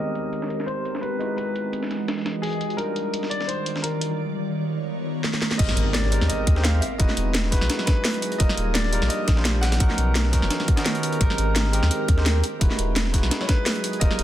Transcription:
Already playing: G#3 C4 D#4 G4 A#4 D#5
0.00 G4 A#4
0.15 closed hi-hat
0.33 closed hi-hat
0.42 snare
0.50 closed hi-hat
0.60 snare
0.66 C5, closed hi-hat
0.85 closed hi-hat
0.95 snare
1.01 B4, closed hi-hat
1.19 E3 G#3 D#4 E4 F#4 B4 D#5, closed hi-hat
1.36 B4, closed hi-hat
1.56 closed hi-hat
1.73 closed hi-hat
1.83 snare
1.91 snare, closed hi-hat
2.08 snare, closed hi-hat
2.18 snare
2.26 snare, closed hi-hat
2.42 G#4, closed hi-hat, open hi-hat
2.53 closed hi-hat
2.61 closed hi-hat
2.70 closed hi-hat
2.77 D#3 G3 D4 D#4 F4 A#4 D5, closed hi-hat
2.96 closed hi-hat
3.14 closed hi-hat
3.23 snare
3.30 D5, closed hi-hat
3.41 snare
3.47 C5, closed hi-hat
3.66 closed hi-hat
3.76 snare
3.82 A#4, closed hi-hat
4.01 closed hi-hat
4.19 B3 A#4 C#5
5.24 snare
5.34 snare
5.42 snare
5.51 snare
5.58 G#1 G#3 C4 D#4 G4 A#4 D#5, kick, closed hi-hat, crash, impact
5.69 snare
5.77 G#1, closed hi-hat
5.93 D5, snare, closed hi-hat
6.04 snare
6.10 G#3 C4 D#4 G4 A#4, closed hi-hat, open hi-hat
6.21 D#2, snare
6.28 D#5, closed hi-hat
6.47 D#2, kick, closed hi-hat
6.56 G#3 C4 D#4 G4 C5, snare
6.63 F5, snare, closed hi-hat
6.81 F#3 G#4 D#5 E5, closed hi-hat, open hi-hat
6.98 E1 G#3 D#4 E4 F#4 B4 D#5, kick, closed hi-hat
7.09 snare
7.17 E1, closed hi-hat
7.35 snare, closed hi-hat
7.44 snare
7.51 G#3 D#4 E4 F#4 B4, kick, snare, closed hi-hat, open hi-hat
7.61 B1, snare
7.70 snare, closed hi-hat
7.79 snare
7.86 B4, kick, snare, closed hi-hat
8.05 snare, closed hi-hat, open hi-hat
8.14 closed hi-hat
8.22 closed hi-hat, open hi-hat
8.32 closed hi-hat
8.38 D#1 F3 G3 A#3 D#4 F4 G4 A#4 D#5 D6, kick, closed hi-hat
8.49 snare
8.57 D#1, closed hi-hat
8.74 D5, snare, closed hi-hat
8.84 snare
8.91 G3 D4 D#4 F4 A#4, closed hi-hat, open hi-hat
9.02 A#1, snare
9.08 D#5, closed hi-hat
9.28 A#1, kick, snare, closed hi-hat
9.35 G3 D4 D#4 F4 C5, snare
9.45 snare, closed hi-hat
9.61 F#5, snare, closed hi-hat, open hi-hat
9.72 snare, closed hi-hat
9.79 B1 D#3 B3 C#4 D#4 F#4 A#4, kick, closed hi-hat
9.90 snare
9.98 B1, closed hi-hat
10.15 snare, closed hi-hat
10.25 snare
10.31 B3 C#4 D#4 F#4 A#4, kick, snare, closed hi-hat, open hi-hat
10.42 F#1, snare
10.50 snare, closed hi-hat
10.60 snare
10.68 kick, closed hi-hat
10.76 B3 C#4 D#4 F#4 A#4, snare, closed hi-hat
10.86 snare, closed hi-hat
10.95 closed hi-hat
11.03 closed hi-hat, open hi-hat
11.13 closed hi-hat
11.19 G#1 G#3 C4 D#4 G4 A#4, kick, closed hi-hat
11.30 snare
11.38 G#1, closed hi-hat
11.56 snare, closed hi-hat
11.65 snare
11.72 G#3 C4 D#4 G4 A#4, closed hi-hat, open hi-hat
11.83 D#2, snare
11.91 closed hi-hat
12.08 D#2, kick, closed hi-hat
12.17 G#3 C4 D#4 G4 C5, snare
12.26 snare, closed hi-hat
12.44 F#3 G#4 D#5, closed hi-hat, open hi-hat
12.60 E1 G#3 D#4 E4 F#4 B4, kick, closed hi-hat
12.71 snare
12.79 E1, closed hi-hat
12.96 snare, closed hi-hat
13.05 snare
13.12 G#3 D#4 E4 F#4 B4, kick, snare, closed hi-hat, open hi-hat
13.23 B1, snare
13.31 snare, closed hi-hat
13.41 C#5, snare
13.47 B4, kick, snare, closed hi-hat
13.66 snare, closed hi-hat, open hi-hat
13.76 closed hi-hat
13.84 closed hi-hat, open hi-hat
13.93 closed hi-hat
14.00 D#1 F3 G3 A#3 D#4 F4 G4 A#4 D#5 D6, kick, closed hi-hat
14.11 snare
14.19 D#1, closed hi-hat

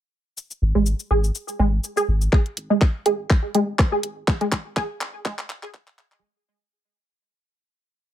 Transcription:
0.37 cabasa
0.51 cabasa
0.62 G#1
0.75 G#1 G#3
0.86 cabasa
1.00 cabasa
1.11 G#1 G#4
1.24 cabasa
1.35 cabasa
1.48 cabasa
1.59 G#1 G#3
1.84 cabasa
1.97 G#4, cabasa
2.08 G#1
2.21 cabasa
2.33 kick, clap
2.46 closed hi-hat
2.57 G#1, closed hi-hat
2.70 G#1 G#3
2.81 kick, clap
3.06 G#1 G#4, closed hi-hat
3.30 kick, clap
3.55 G#1 G#3, closed hi-hat
3.79 kick, cross-stick, clap
3.92 G#4
4.03 G#1, closed hi-hat
4.28 kick, clap
4.41 G#3, closed hi-hat
4.52 G#1, kick, clap, closed hi-hat
4.65 G#1
4.77 G#4, kick, clap
5.01 G#1, clap, closed hi-hat
5.25 G#3, kick, clap
5.39 clap
5.50 G#1, clap, closed hi-hat
5.63 G#4, clap
5.74 kick, clap
5.87 clap
5.98 clap, closed hi-hat
6.12 G#3, clap

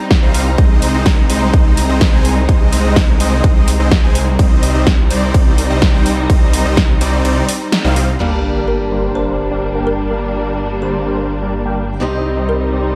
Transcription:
Already playing: G3 C4 D#4
0.11 kick, snare
0.23 C2 G3 C4 D#4 C5 F5
0.34 open hi-hat
0.58 C2 G#3 C4 D#4 C5 D#5, kick, ride
0.82 open hi-hat
0.94 C2 G#3 C4 D#4 C5 D#5
1.06 kick, snare, ride
1.30 C2 G#3 C4 D#4 C5 D#5, open hi-hat
1.53 C2 C4, kick, ride
1.77 open hi-hat
1.89 C2 G#3 C4 D#4 C5 D#5
2.01 kick, snare, ride
2.13 C2 G#3 C4 D#4 C5 G#5
2.25 open hi-hat
2.49 C2 G#3 C4 D#4 C5 D#5, kick, ride
2.73 open hi-hat
2.84 C2 G#3 C4 D#4 C5 D#5
2.96 kick, snare, ride
3.20 C2 G#3 C4 D#4 C5 D#5, open hi-hat
3.44 C2, kick, ride
3.68 open hi-hat
3.80 C2 G#3 C4 D#4 C5 D#5
3.91 kick, snare, ride
4.03 C2 G#3 C4 D#4 C5 G#5
4.15 open hi-hat
4.39 C2 G3 C4 D#4 C5 D#5, kick, ride
4.63 open hi-hat
4.75 C2 G3 C4 D#4 C5 D#5
4.87 kick, snare, ride
5.11 C2 G3 C4 D#4 C5 D5, open hi-hat
5.34 C2 G3 C4 D#4 C5 D5, kick, ride
5.58 open hi-hat
5.70 C2 G3 C4 D#4 C5 D#5
5.82 kick, snare, ride
5.94 C2 G3 C4 D#4 C5 G5
6.06 open hi-hat
6.30 C2 G3 C4 D#4 C5 D#5, kick, ride
6.53 open hi-hat
6.65 C2 G3 C4 D#4 C5 D#5
6.77 kick, snare, ride
7.01 C2 G3 C4 D#4 C5 D5, open hi-hat
7.25 C2 G3 C4 D#4 C5 D5, ride
7.49 open hi-hat
7.72 snare, ride
7.84 C2 G3 C4 D#4 C5 F5
7.96 open hi-hat
8.19 G1 G2 G3 A#3 D4 G4 A#4 D5, crash, sub drop
8.56 G3 A#3 D4 A#4 D5
8.68 A#4
8.92 G3 A#3 D4 A#4 C5
9.15 G3 A#3 D4 A#4 C5
9.51 G3 A#3 D4 A#4 D5
9.75 G3 A#3 D4 A#4 G5
9.87 A#4
10.11 G3 A#3 D4 A#4 D5
10.46 G3 A#3 D4 A#4 D5
10.82 G3 A#3 D4 G4 A#4 C5
11.06 G3 A#3 D4 A#4 C5
11.42 G3 A#3 D4 A#4 D5
11.65 G3 A#3 D4 A#4 G5
12.00 C2 C3 G3 C4 D#4 G4 C5 D#5
12.37 G3 C4 D#4 C5 D#5
12.49 A#4
12.73 G3 C4 D#4 C5 D5

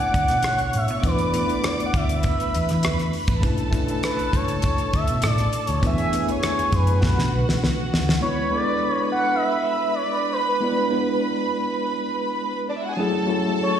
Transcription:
Already playing: A3 B3 C#4 D4 E4 B4 D5 F#5 D6
0.14 D2, kick, closed hi-hat
0.28 B2, cross-stick, closed hi-hat
0.43 C#5 C#6, cross-stick, closed hi-hat
0.59 closed hi-hat
0.73 A2 E5, closed hi-hat
0.88 B2, closed hi-hat
1.01 E2 A3 B3 D4 E4 B4 D5 D6, kick, closed hi-hat
1.06 B4
1.18 closed hi-hat
1.31 A3 B3 D4 E4, closed hi-hat
1.35 B4
1.46 A3 B3 D4 E4 B4, closed hi-hat
1.50 muted fingered electric bass stroke
1.64 D5, cross-stick, closed hi-hat
1.80 muted fingered electric bass stroke, closed hi-hat
1.86 F#5
1.94 D2 E5, kick, closed hi-hat
2.09 closed hi-hat
2.23 B4 B5, kick, closed hi-hat
2.40 closed hi-hat
2.55 E2, closed hi-hat
2.69 E3, cross-stick, closed hi-hat
2.83 E2, cross-stick, closed hi-hat
2.99 cross-stick, closed hi-hat
3.13 open hi-hat
3.28 A1, kick, closed hi-hat
3.40 B1 A3 C#4 D4 E4 A4 A5, kick, closed hi-hat
3.45 B4
3.58 closed hi-hat
3.71 A3 C#4 D4 E4, kick, closed hi-hat
3.75 B4
3.87 A3 C#4 D4 E4 B4, muted fingered electric bass stroke, closed hi-hat
4.03 B4, cross-stick, closed hi-hat
4.19 muted fingered electric bass stroke, closed hi-hat
4.33 C#2 C#5, kick, closed hi-hat
4.48 closed hi-hat
4.62 kick, closed hi-hat
4.78 closed hi-hat
4.93 D2 E5, kick, closed hi-hat
5.07 B2, closed hi-hat
5.22 A2 A4 A5, cross-stick, closed hi-hat
5.26 D5
5.38 cross-stick, closed hi-hat
5.53 closed hi-hat
5.66 D2 C#5, closed hi-hat
5.80 E2 A3 B3 D4 E4 G#5, kick, closed hi-hat
5.84 G#4 B4 E5
5.98 closed hi-hat
6.11 A3 B3 D4 E4 B4, closed hi-hat
6.26 A3 B3 D4 E4 B4, closed hi-hat
6.30 C#5, muted fingered electric bass stroke
6.43 cross-stick, closed hi-hat
6.59 muted fingered electric bass stroke, closed hi-hat
6.72 F#2 B4, kick, closed hi-hat
6.87 closed hi-hat
7.00 B1 A3 C#4 D4 F#4 B4 F#5, kick, snare
7.19 B2, snare
7.34 B1
7.49 C#2, snare
7.63 B1, snare
7.93 D2, snare
8.09 snare
8.21 G#3 B3 D4 E4 B4 C#5 B5
8.51 G#3 B3 D4 E4 D5
8.55 A4
8.61 B4
8.91 C#5
9.12 F#5
9.35 D#5
9.43 E5
9.94 C#5
10.02 D4 D5
10.33 B4
10.60 G#3 B3 D4 E4 D5
10.89 G#3 B3 D4 E4
10.93 B4
12.70 D4 D5
12.78 E4 E5
12.84 F#4 F#5
12.92 G#4 G#5
12.97 F#3 A3 C#4 E4 G#4 A4
13.01 A5
13.26 F#3 A3 C#4 E4 A4
13.63 C#5

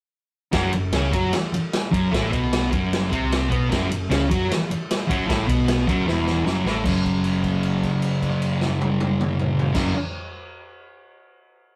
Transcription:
0.52 F#1 F#2 F#3, kick, snare, ride
0.72 F#1 F#2, ride
0.92 C#2 C#3 C#4, snare, ride
1.13 F#2 F#3 F#4, kick, ride
1.31 muted picked electric bass stroke, muted distorted electric guitar stroke, snare, ride
1.52 muted picked electric bass stroke, muted distorted electric guitar stroke, ride
1.73 snare, ride
1.91 F#1 F#2 F#3, kick, ride
2.11 A1 A2 A3, kick, snare, ride
2.31 B1 B2 B3, kick, ride
2.53 snare, ride
2.70 F#1 F#2 F#3, kick, ride
2.93 snare, ride
3.10 C2 C3 C4, kick, ride
3.32 snare, ride
3.49 B1 B2 B3, kick, ride
3.69 F#2 F#3, kick, snare, ride
3.89 F#1 F#2, ride
4.09 C#2 C#3 C#4, snare, ride
4.29 F#2 F#3 F#4, kick, ride
4.49 muted distorted electric guitar stroke, muted picked electric bass stroke, snare, ride
4.69 muted picked electric bass stroke, muted distorted electric guitar stroke, ride
4.91 snare, ride
5.08 F#1 F#2 F#3, kick, ride
5.27 A1 A2 A3, kick, snare, ride
5.47 B1 B2 B3, kick, ride
5.68 snare, ride
5.87 F#1 F#2 F#3, kick, ride
6.05 E1 E2 E3, snare
6.27 snare
6.45 F#1 F#2 F#3, snare
6.64 A1 A2 A3, snare
6.85 F#1 F#2 C#3, kick, crash
6.89 F#3
7.05 kick, crash
7.24 crash
7.44 kick, crash
7.63 crash
7.83 kick, crash
8.02 crash
8.22 kick, crash
8.42 crash
8.61 snare
8.81 high tom
9.01 high tom
9.21 mid tom
9.39 mid tom
9.59 floor tom
9.73 F#1 F#2 C#3 F#3, kick, snare, crash

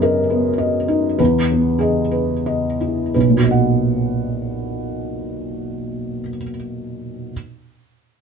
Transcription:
Already playing: F#2 B3 G#4
0.02 A#4 D#5
0.30 B3
0.58 D#5
0.88 D#4
1.19 E2 B4
1.52 B3
1.79 G#4 D#5
2.11 B4
2.46 D#5
2.81 E4
3.14 B1 B4
3.23 B2
3.30 A#2
3.37 F#4
3.44 D#5
3.51 F#5

